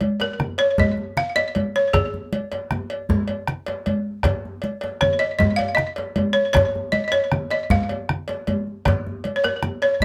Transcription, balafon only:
0, 0, Header, 1, 2, 480
1, 0, Start_track
1, 0, Tempo, 384369
1, 2421, Time_signature, 12, 3, 24, 8
1, 12548, End_track
2, 0, Start_track
2, 0, Title_t, "Balafon"
2, 0, Program_c, 0, 12
2, 268, Note_on_c, 0, 70, 77
2, 733, Note_on_c, 0, 73, 78
2, 759, Note_off_c, 0, 70, 0
2, 843, Note_off_c, 0, 73, 0
2, 994, Note_on_c, 0, 75, 83
2, 1467, Note_on_c, 0, 77, 89
2, 1482, Note_off_c, 0, 75, 0
2, 1574, Note_off_c, 0, 77, 0
2, 1696, Note_on_c, 0, 75, 96
2, 2194, Note_off_c, 0, 75, 0
2, 2195, Note_on_c, 0, 73, 82
2, 2300, Note_off_c, 0, 73, 0
2, 2415, Note_on_c, 0, 68, 75
2, 3329, Note_off_c, 0, 68, 0
2, 6257, Note_on_c, 0, 73, 77
2, 6483, Note_off_c, 0, 73, 0
2, 6484, Note_on_c, 0, 75, 77
2, 6711, Note_off_c, 0, 75, 0
2, 6726, Note_on_c, 0, 75, 83
2, 6947, Note_on_c, 0, 77, 84
2, 6982, Note_off_c, 0, 75, 0
2, 7177, Note_on_c, 0, 75, 87
2, 7187, Note_off_c, 0, 77, 0
2, 7906, Note_on_c, 0, 73, 76
2, 7943, Note_off_c, 0, 75, 0
2, 8023, Note_off_c, 0, 73, 0
2, 8158, Note_on_c, 0, 73, 83
2, 8643, Note_on_c, 0, 75, 77
2, 8666, Note_off_c, 0, 73, 0
2, 8811, Note_off_c, 0, 75, 0
2, 8839, Note_on_c, 0, 75, 59
2, 8889, Note_on_c, 0, 73, 75
2, 8915, Note_off_c, 0, 75, 0
2, 9382, Note_on_c, 0, 75, 74
2, 9391, Note_off_c, 0, 73, 0
2, 9606, Note_off_c, 0, 75, 0
2, 9629, Note_on_c, 0, 77, 78
2, 10537, Note_off_c, 0, 77, 0
2, 11689, Note_on_c, 0, 73, 61
2, 11780, Note_off_c, 0, 73, 0
2, 11794, Note_on_c, 0, 70, 79
2, 12235, Note_off_c, 0, 70, 0
2, 12269, Note_on_c, 0, 73, 74
2, 12513, Note_off_c, 0, 73, 0
2, 12548, End_track
0, 0, End_of_file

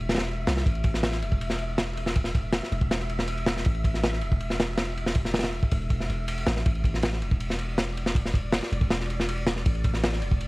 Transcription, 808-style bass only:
0, 0, Header, 1, 2, 480
1, 0, Start_track
1, 0, Tempo, 375000
1, 842, Time_signature, 4, 2, 24, 8
1, 13409, End_track
2, 0, Start_track
2, 0, Title_t, "808-style bass"
2, 0, Program_c, 0, 38
2, 0, Note_on_c, 0, 28, 96
2, 597, Note_off_c, 0, 28, 0
2, 604, Note_on_c, 0, 36, 80
2, 820, Note_off_c, 0, 36, 0
2, 846, Note_on_c, 0, 33, 92
2, 1564, Note_on_c, 0, 28, 96
2, 1583, Note_off_c, 0, 33, 0
2, 3345, Note_off_c, 0, 28, 0
2, 3481, Note_on_c, 0, 28, 97
2, 4663, Note_off_c, 0, 28, 0
2, 4687, Note_on_c, 0, 33, 101
2, 5399, Note_on_c, 0, 28, 94
2, 5418, Note_off_c, 0, 33, 0
2, 7182, Note_off_c, 0, 28, 0
2, 7321, Note_on_c, 0, 28, 97
2, 7795, Note_off_c, 0, 28, 0
2, 7803, Note_on_c, 0, 28, 77
2, 8264, Note_off_c, 0, 28, 0
2, 8280, Note_on_c, 0, 33, 89
2, 8497, Note_off_c, 0, 33, 0
2, 8527, Note_on_c, 0, 33, 98
2, 9239, Note_on_c, 0, 28, 99
2, 9258, Note_off_c, 0, 33, 0
2, 11022, Note_off_c, 0, 28, 0
2, 11164, Note_on_c, 0, 28, 100
2, 12344, Note_off_c, 0, 28, 0
2, 12366, Note_on_c, 0, 33, 100
2, 13083, Note_on_c, 0, 28, 99
2, 13102, Note_off_c, 0, 33, 0
2, 13409, Note_off_c, 0, 28, 0
2, 13409, End_track
0, 0, End_of_file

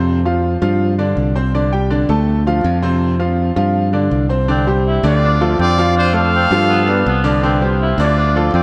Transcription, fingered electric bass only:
0, 0, Header, 1, 2, 480
1, 0, Start_track
1, 0, Tempo, 368777
1, 79, Time_signature, 4, 2, 24, 8
1, 11230, End_track
2, 0, Start_track
2, 0, Title_t, "Fingered electric bass"
2, 0, Program_c, 0, 33
2, 0, Note_on_c, 0, 41, 83
2, 724, Note_off_c, 0, 41, 0
2, 805, Note_on_c, 0, 43, 99
2, 1471, Note_off_c, 0, 43, 0
2, 1519, Note_on_c, 0, 36, 89
2, 2642, Note_off_c, 0, 36, 0
2, 2719, Note_on_c, 0, 38, 100
2, 3388, Note_off_c, 0, 38, 0
2, 3441, Note_on_c, 0, 41, 90
2, 4563, Note_off_c, 0, 41, 0
2, 4638, Note_on_c, 0, 43, 101
2, 5307, Note_off_c, 0, 43, 0
2, 5353, Note_on_c, 0, 36, 88
2, 6479, Note_off_c, 0, 36, 0
2, 6552, Note_on_c, 0, 38, 99
2, 7224, Note_off_c, 0, 38, 0
2, 7278, Note_on_c, 0, 41, 93
2, 8402, Note_off_c, 0, 41, 0
2, 8470, Note_on_c, 0, 43, 101
2, 9143, Note_off_c, 0, 43, 0
2, 9194, Note_on_c, 0, 36, 100
2, 10321, Note_off_c, 0, 36, 0
2, 10384, Note_on_c, 0, 38, 100
2, 11061, Note_off_c, 0, 38, 0
2, 11113, Note_on_c, 0, 41, 95
2, 11230, Note_off_c, 0, 41, 0
2, 11230, End_track
0, 0, End_of_file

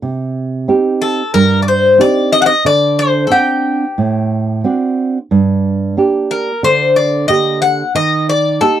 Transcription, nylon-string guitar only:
0, 0, Header, 1, 2, 480
1, 0, Start_track
1, 0, Tempo, 660793
1, 15, Time_signature, 4, 2, 24, 8
1, 6392, End_track
2, 0, Start_track
2, 0, Title_t, "Nylon-string guitar"
2, 0, Program_c, 0, 24
2, 17, Note_on_c, 0, 48, 66
2, 482, Note_off_c, 0, 48, 0
2, 495, Note_on_c, 0, 60, 49
2, 498, Note_on_c, 0, 63, 46
2, 501, Note_on_c, 0, 67, 58
2, 879, Note_off_c, 0, 60, 0
2, 880, Note_off_c, 0, 63, 0
2, 883, Note_off_c, 0, 67, 0
2, 976, Note_on_c, 0, 43, 71
2, 1439, Note_on_c, 0, 60, 52
2, 1442, Note_off_c, 0, 43, 0
2, 1444, Note_on_c, 0, 63, 46
2, 1449, Note_on_c, 0, 67, 57
2, 1830, Note_off_c, 0, 60, 0
2, 1833, Note_off_c, 0, 63, 0
2, 1834, Note_off_c, 0, 67, 0
2, 1924, Note_on_c, 0, 50, 65
2, 2395, Note_off_c, 0, 50, 0
2, 2397, Note_on_c, 0, 60, 48
2, 2402, Note_on_c, 0, 62, 45
2, 2410, Note_on_c, 0, 78, 61
2, 2789, Note_off_c, 0, 60, 0
2, 2790, Note_off_c, 0, 62, 0
2, 2796, Note_off_c, 0, 78, 0
2, 2890, Note_on_c, 0, 45, 70
2, 3358, Note_off_c, 0, 45, 0
2, 3372, Note_on_c, 0, 60, 56
2, 3376, Note_on_c, 0, 62, 52
2, 3376, Note_on_c, 0, 66, 54
2, 3757, Note_off_c, 0, 60, 0
2, 3759, Note_off_c, 0, 66, 0
2, 3760, Note_off_c, 0, 62, 0
2, 3857, Note_on_c, 0, 43, 70
2, 4322, Note_off_c, 0, 43, 0
2, 4337, Note_on_c, 0, 58, 52
2, 4341, Note_on_c, 0, 62, 45
2, 4346, Note_on_c, 0, 67, 59
2, 4721, Note_off_c, 0, 58, 0
2, 4722, Note_off_c, 0, 62, 0
2, 4726, Note_off_c, 0, 67, 0
2, 4816, Note_on_c, 0, 50, 72
2, 5281, Note_off_c, 0, 50, 0
2, 5295, Note_on_c, 0, 58, 53
2, 5300, Note_on_c, 0, 50, 46
2, 5301, Note_on_c, 0, 67, 57
2, 5679, Note_off_c, 0, 58, 0
2, 5682, Note_off_c, 0, 50, 0
2, 5682, Note_off_c, 0, 67, 0
2, 5773, Note_on_c, 0, 51, 64
2, 6239, Note_off_c, 0, 51, 0
2, 6255, Note_on_c, 0, 58, 52
2, 6257, Note_on_c, 0, 63, 42
2, 6262, Note_on_c, 0, 67, 53
2, 6392, Note_off_c, 0, 58, 0
2, 6392, Note_off_c, 0, 63, 0
2, 6392, Note_off_c, 0, 67, 0
2, 6392, End_track
0, 0, End_of_file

